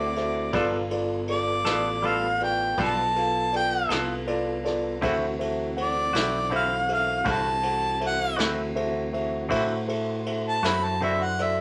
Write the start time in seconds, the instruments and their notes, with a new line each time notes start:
Already playing: fingered electric bass D2, tonewheel organ C4 E4 F#4, harmonica D5
0.16 upright piano F#4 A4 C5 E5, snare, ride
0.53 fingered electric bass G1, clean electric guitar G3 B3 F4 A4, tonewheel organ B3 F4 A4, upright piano F4 A4 B4 D5, kick, ride
0.91 upright piano F4 A4 B4 D5, ride
1.28 upright piano F4 A4 B4 D5, harmonica D5, ride
1.64 fingered electric bass A1, clean electric guitar B3 F4 A4, upright piano F4 A4 B4 D5, snare, ride
2.02 clean electric guitar G3 B3 F4 A4, upright piano F4 A4 B4 D5, ride
2.06 harmonica F5
2.40 upright piano F4 A4 B4 D5, harmonica G5, ride
2.77 fingered electric bass B1, clean electric guitar G3 B3 F4 A4, upright piano F4 A4 B4 D5, kick, snare, ride
2.83 harmonica A5
3.15 upright piano F4 A4 B4 F5, ride
3.52 upright piano F4 A4 B4 D5, ride
3.56 harmonica G5
3.89 fingered electric bass C2, clean electric guitar B3 F4 A4, upright piano F4 A4 B4 F5, snare, ride
4.27 upright piano F4 A4 B4 D5, ride
4.65 upright piano F4 A4 B4 D5, snare, ride
5.02 fingered electric bass D2, clean electric guitar D3 C4 E4 F#4, tonewheel organ E3 C4 F#4, upright piano F#4 A4 C5 E5, kick, ride
5.39 upright piano F#4 A4 C5 E5, ride
5.77 upright piano F#4 A4 C5 F#5, ride
5.82 harmonica D5
6.13 fingered electric bass B1, clean electric guitar C4 E4 F#4, upright piano F#4 A4 C5 E5, snare, ride
6.50 clean electric guitar D3 C4 E4 F#4, upright piano F#4 A4 C5 E5, ride
6.56 harmonica F5
6.89 upright piano F#4 A4 C5 E5, ride
6.94 harmonica F5
7.25 fingered electric bass C2, clean electric guitar D3 C4 E4 F#4, upright piano F#4 A4 C5 E5, kick, ride
7.31 harmonica A5
7.63 upright piano F#4 A4 C5 F#5, ride
8.00 upright piano F#4 A4 C5 E5, ride
8.07 harmonica F#5
8.37 fingered electric bass D2, clean electric guitar C4 E4 F#4, upright piano F#4 A4 C5 E5, snare, ride
8.75 upright piano F#4 A4 C5 E5, ride
9.13 upright piano F#4 A4 C5 E5, ride
9.49 fingered electric bass A2, clean electric guitar D3 C4 E4 F#4, tonewheel organ E4 F#4 C5, upright piano F#4 A4 C5 E5, kick, ride
9.88 upright piano F#4 A4 C5 E5, ride
10.26 upright piano F#4 A4 C5 E5, ride
10.49 harmonica A5
10.62 fingered electric bass F#2, clean electric guitar C4 E4 F#4, upright piano F#4 A4 C5 E5, snare, ride
10.68 harmonica B5
10.84 harmonica A5
11.01 clean electric guitar D3 C4 E4 F#4, upright piano F#4 A4 C5 D5, harmonica E5, ride
11.23 harmonica F#5
11.39 upright piano F#4 A4 C5 D5, harmonica E5, ride